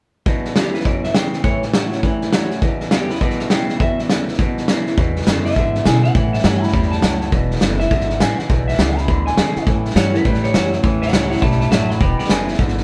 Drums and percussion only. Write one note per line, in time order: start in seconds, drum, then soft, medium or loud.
0.26 kick loud
0.26 snare soft
0.45 snare soft
0.56 snare loud
0.56 hi-hat pedal medium
0.74 snare soft
0.80 snare soft
0.85 kick loud
0.85 snare soft
1.04 snare soft
1.15 snare loud
1.15 hi-hat pedal medium
1.33 snare soft
1.44 kick loud
1.44 snare soft
1.63 snare soft
1.74 snare loud
1.74 hi-hat pedal medium
1.92 snare soft
2.03 kick loud
2.03 snare soft
2.22 snare soft
2.33 snare loud
2.33 hi-hat pedal medium
2.51 snare soft
2.62 kick loud
2.62 snare soft
2.81 snare soft
2.91 snare loud
2.91 hi-hat pedal medium
3.10 snare soft
3.15 snare soft
3.21 kick loud
3.21 snare soft
3.30 snare soft
3.40 snare soft
3.50 snare loud
3.50 hi-hat pedal medium
3.69 snare soft
3.80 kick loud
3.80 snare soft
3.99 snare soft
4.10 snare loud
4.10 hi-hat pedal medium
4.28 snare soft
4.34 snare soft
4.39 kick loud
4.39 snare soft
4.58 snare soft
4.68 snare loud
4.68 hi-hat pedal medium
4.87 snare soft
4.97 kick loud
4.97 snare soft
5.16 snare soft
5.22 snare soft
5.27 snare loud
5.27 hi-hat pedal medium
5.45 snare soft
5.51 snare soft
5.56 kick loud
5.56 snare soft
5.75 snare soft
5.85 snare loud
5.85 hi-hat pedal medium
6.04 snare soft
6.15 kick loud
6.15 snare soft
6.34 snare soft
6.39 snare soft
6.44 snare loud
6.44 hi-hat pedal medium
6.63 snare soft
6.68 snare soft
6.73 kick loud
6.73 snare soft
6.83 snare soft
6.92 snare soft
7.02 snare loud
7.02 hi-hat pedal medium
7.21 snare soft
7.32 kick loud
7.32 snare soft
7.51 snare soft
7.56 snare soft
7.61 snare loud
7.61 hi-hat pedal medium
7.80 snare soft
7.91 kick loud
7.91 snare soft
8.00 snare soft
8.10 snare soft
8.20 snare loud
8.20 hi-hat pedal loud
8.39 snare soft
8.50 kick loud
8.50 snare soft
8.68 snare soft
8.74 snare soft
8.79 snare loud
8.79 hi-hat pedal medium
8.98 snare soft
9.08 kick loud
9.08 snare soft
9.27 snare soft
9.37 snare loud
9.37 hi-hat pedal medium
9.56 snare soft
9.67 kick loud
9.67 snare soft
9.85 snare soft
9.90 snare soft
9.96 snare loud
9.96 hi-hat pedal medium
10.14 snare soft
10.25 kick loud
10.25 snare soft
10.34 snare soft
10.44 snare soft
10.54 snare loud
10.54 hi-hat pedal medium
10.73 snare soft
10.84 kick loud
10.84 snare soft
11.02 snare soft
11.08 snare soft
11.13 snare loud
11.13 hi-hat pedal medium
11.32 snare soft
11.37 snare soft
11.42 kick loud
11.42 snare soft
11.51 snare soft
11.61 snare soft
11.72 snare loud
11.72 hi-hat pedal medium
11.90 snare soft
12.01 kick loud
12.01 snare soft
12.19 snare soft
12.24 snare soft
12.29 snare loud
12.29 hi-hat pedal medium
12.48 snare soft
12.54 snare soft
12.59 kick loud
12.59 snare soft
12.68 snare soft
12.78 snare soft